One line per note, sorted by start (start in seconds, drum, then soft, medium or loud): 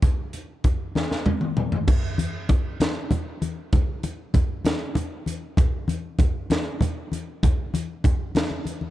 0.02 kick loud
0.02 closed hi-hat medium
0.02 muted conga medium
0.02 low conga medium
0.33 closed hi-hat medium
0.33 low conga soft
0.64 kick medium
0.64 closed hi-hat medium
0.64 muted conga medium
0.64 low conga medium
0.95 snare medium
0.95 high conga medium
1.11 snare medium
1.11 low conga soft
1.26 high tom medium
1.26 muted conga medium
1.26 low conga medium
1.41 mid tom medium
1.57 mid tom medium
1.57 high conga medium
1.72 floor tom medium
1.88 kick loud
1.88 crash medium
1.88 muted conga medium
1.88 low conga medium
2.04 low conga soft
2.18 closed hi-hat medium
2.18 high conga medium
2.18 low conga soft
2.49 kick medium
2.49 closed hi-hat medium
2.49 muted conga medium
2.49 low conga medium
2.80 snare loud
2.80 closed hi-hat medium
2.80 high conga medium
2.80 low conga soft
3.11 closed hi-hat medium
3.11 muted conga medium
3.11 low conga medium
3.42 closed hi-hat medium
3.42 high conga medium
3.73 kick loud
3.73 closed hi-hat medium
3.73 muted conga medium
3.73 low conga medium
3.88 low conga soft
4.03 closed hi-hat medium
4.03 high conga medium
4.03 low conga soft
4.34 kick medium
4.34 closed hi-hat medium
4.34 muted conga medium
4.34 low conga medium
4.64 snare loud
4.64 closed hi-hat medium
4.64 high conga medium
4.64 low conga soft
4.95 closed hi-hat medium
4.95 muted conga medium
4.95 low conga medium
5.26 closed hi-hat medium
5.26 high conga medium
5.57 kick loud
5.57 closed hi-hat medium
5.57 muted conga medium
5.57 low conga medium
5.72 low conga soft
5.88 closed hi-hat medium
5.88 high conga medium
5.88 low conga soft
6.19 kick medium
6.19 closed hi-hat medium
6.19 muted conga medium
6.19 low conga medium
6.50 snare loud
6.50 closed hi-hat medium
6.50 high conga medium
6.50 low conga soft
6.81 closed hi-hat medium
6.81 muted conga medium
6.81 low conga medium
7.12 closed hi-hat medium
7.12 high conga medium
7.43 kick loud
7.43 closed hi-hat medium
7.43 muted conga medium
7.43 low conga medium
7.74 closed hi-hat medium
7.74 high conga medium
8.04 kick medium
8.04 closed hi-hat medium
8.04 muted conga medium
8.04 low conga medium
8.20 low conga soft
8.35 snare loud
8.35 closed hi-hat medium
8.35 high conga medium
8.35 low conga soft
8.50 high conga medium
8.65 closed hi-hat medium
8.65 high conga medium
8.81 high conga medium